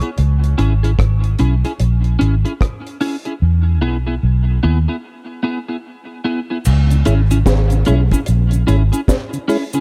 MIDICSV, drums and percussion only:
0, 0, Header, 1, 2, 480
1, 0, Start_track
1, 0, Tempo, 809717
1, 106, Time_signature, 4, 2, 24, 8
1, 5811, End_track
2, 0, Start_track
2, 0, Title_t, "Drums"
2, 9, Note_on_c, 9, 42, 51
2, 68, Note_off_c, 9, 42, 0
2, 105, Note_on_c, 9, 42, 79
2, 164, Note_off_c, 9, 42, 0
2, 259, Note_on_c, 9, 42, 46
2, 318, Note_off_c, 9, 42, 0
2, 348, Note_on_c, 9, 42, 73
2, 407, Note_off_c, 9, 42, 0
2, 499, Note_on_c, 9, 42, 53
2, 559, Note_off_c, 9, 42, 0
2, 585, Note_on_c, 9, 36, 102
2, 590, Note_on_c, 9, 42, 87
2, 591, Note_on_c, 9, 37, 105
2, 644, Note_off_c, 9, 36, 0
2, 650, Note_off_c, 9, 37, 0
2, 650, Note_off_c, 9, 42, 0
2, 734, Note_on_c, 9, 42, 49
2, 793, Note_off_c, 9, 42, 0
2, 822, Note_on_c, 9, 42, 69
2, 881, Note_off_c, 9, 42, 0
2, 976, Note_on_c, 9, 42, 61
2, 1035, Note_off_c, 9, 42, 0
2, 1065, Note_on_c, 9, 42, 89
2, 1124, Note_off_c, 9, 42, 0
2, 1210, Note_on_c, 9, 42, 34
2, 1270, Note_off_c, 9, 42, 0
2, 1310, Note_on_c, 9, 42, 77
2, 1369, Note_off_c, 9, 42, 0
2, 1456, Note_on_c, 9, 42, 51
2, 1515, Note_off_c, 9, 42, 0
2, 1546, Note_on_c, 9, 36, 101
2, 1552, Note_on_c, 9, 37, 96
2, 1553, Note_on_c, 9, 42, 85
2, 1605, Note_off_c, 9, 36, 0
2, 1612, Note_off_c, 9, 37, 0
2, 1612, Note_off_c, 9, 42, 0
2, 1699, Note_on_c, 9, 42, 44
2, 1758, Note_off_c, 9, 42, 0
2, 1784, Note_on_c, 9, 46, 69
2, 1843, Note_off_c, 9, 46, 0
2, 1929, Note_on_c, 9, 42, 46
2, 1988, Note_off_c, 9, 42, 0
2, 3942, Note_on_c, 9, 69, 75
2, 3943, Note_on_c, 9, 49, 91
2, 4002, Note_off_c, 9, 49, 0
2, 4002, Note_off_c, 9, 69, 0
2, 4093, Note_on_c, 9, 42, 47
2, 4097, Note_on_c, 9, 69, 54
2, 4152, Note_off_c, 9, 42, 0
2, 4156, Note_off_c, 9, 69, 0
2, 4182, Note_on_c, 9, 42, 70
2, 4190, Note_on_c, 9, 69, 53
2, 4241, Note_off_c, 9, 42, 0
2, 4249, Note_off_c, 9, 69, 0
2, 4332, Note_on_c, 9, 69, 66
2, 4333, Note_on_c, 9, 42, 58
2, 4391, Note_off_c, 9, 69, 0
2, 4393, Note_off_c, 9, 42, 0
2, 4421, Note_on_c, 9, 36, 103
2, 4424, Note_on_c, 9, 38, 120
2, 4424, Note_on_c, 9, 42, 84
2, 4425, Note_on_c, 9, 69, 64
2, 4480, Note_off_c, 9, 36, 0
2, 4483, Note_off_c, 9, 38, 0
2, 4483, Note_off_c, 9, 42, 0
2, 4484, Note_off_c, 9, 69, 0
2, 4565, Note_on_c, 9, 42, 55
2, 4575, Note_on_c, 9, 69, 61
2, 4624, Note_off_c, 9, 42, 0
2, 4634, Note_off_c, 9, 69, 0
2, 4654, Note_on_c, 9, 42, 70
2, 4668, Note_on_c, 9, 69, 49
2, 4713, Note_off_c, 9, 42, 0
2, 4727, Note_off_c, 9, 69, 0
2, 4810, Note_on_c, 9, 42, 58
2, 4812, Note_on_c, 9, 36, 74
2, 4824, Note_on_c, 9, 69, 73
2, 4870, Note_off_c, 9, 42, 0
2, 4871, Note_off_c, 9, 36, 0
2, 4883, Note_off_c, 9, 69, 0
2, 4898, Note_on_c, 9, 42, 86
2, 4907, Note_on_c, 9, 69, 66
2, 4957, Note_off_c, 9, 42, 0
2, 4966, Note_off_c, 9, 69, 0
2, 5044, Note_on_c, 9, 42, 41
2, 5057, Note_on_c, 9, 69, 48
2, 5104, Note_off_c, 9, 42, 0
2, 5116, Note_off_c, 9, 69, 0
2, 5147, Note_on_c, 9, 42, 76
2, 5147, Note_on_c, 9, 69, 55
2, 5206, Note_off_c, 9, 69, 0
2, 5207, Note_off_c, 9, 42, 0
2, 5292, Note_on_c, 9, 42, 50
2, 5297, Note_on_c, 9, 69, 68
2, 5351, Note_off_c, 9, 42, 0
2, 5357, Note_off_c, 9, 69, 0
2, 5384, Note_on_c, 9, 36, 114
2, 5387, Note_on_c, 9, 38, 104
2, 5388, Note_on_c, 9, 42, 86
2, 5389, Note_on_c, 9, 69, 77
2, 5443, Note_off_c, 9, 36, 0
2, 5447, Note_off_c, 9, 38, 0
2, 5447, Note_off_c, 9, 42, 0
2, 5448, Note_off_c, 9, 69, 0
2, 5533, Note_on_c, 9, 69, 50
2, 5535, Note_on_c, 9, 42, 46
2, 5592, Note_off_c, 9, 69, 0
2, 5595, Note_off_c, 9, 42, 0
2, 5626, Note_on_c, 9, 46, 76
2, 5629, Note_on_c, 9, 69, 54
2, 5685, Note_off_c, 9, 46, 0
2, 5688, Note_off_c, 9, 69, 0
2, 5769, Note_on_c, 9, 69, 82
2, 5770, Note_on_c, 9, 42, 53
2, 5811, Note_off_c, 9, 42, 0
2, 5811, Note_off_c, 9, 69, 0
2, 5811, End_track
0, 0, End_of_file